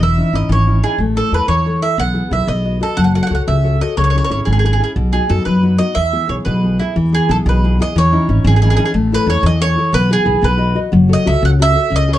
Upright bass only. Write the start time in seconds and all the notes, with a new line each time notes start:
0.00 E1
0.33 G#1
0.49 G#1
0.98 A1
1.32 E2
1.48 E2
1.98 B1
2.31 B1
2.47 B1
2.97 F#1
3.31 C#2
3.48 C#2
3.98 C#2
4.30 G#1
4.47 G#1
4.96 B1
5.30 F#2
5.46 F#2
5.96 E2
6.29 B1
6.46 B1
6.96 E2
7.29 B1
7.46 B1
7.96 E2
8.29 G#1
8.44 G#1
8.94 A1
9.27 E2
9.43 E2
9.93 B1
10.26 B1
10.43 B1
10.93 F#1
11.27 C#2
11.43 C#2
11.92 C#2